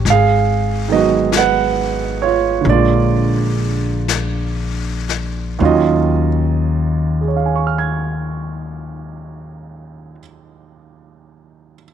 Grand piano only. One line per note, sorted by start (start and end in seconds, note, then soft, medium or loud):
0.10 0.87 G#4 medium
0.10 0.92 F5 medium
0.88 2.65 D#3 soft
0.88 2.63 G#3 soft
0.88 2.67 B3 soft
0.92 2.68 F#3 soft
0.92 1.32 F#4 medium
0.92 1.36 D#5 medium
1.37 2.18 B4 medium
1.37 2.23 F#5 medium
2.22 2.65 F4 soft
2.22 2.64 C#5 medium
2.61 5.58 D3 soft
2.61 5.60 G#3 soft
2.68 5.62 A#3 soft
2.68 5.05 F4 soft
2.68 5.04 D5 medium
5.59 10.17 D#2 medium
5.59 10.18 D#3 medium
5.59 10.19 F#3 medium
5.59 10.19 C#4 soft
5.59 10.20 F4 medium
5.65 10.19 D#5 medium
7.21 11.75 G#4 soft
7.28 11.82 C#5 soft
7.37 11.90 F5 soft
7.46 11.94 G#5 soft
7.56 11.94 C#6 soft
7.67 11.94 F6 soft
7.78 11.94 G#6 soft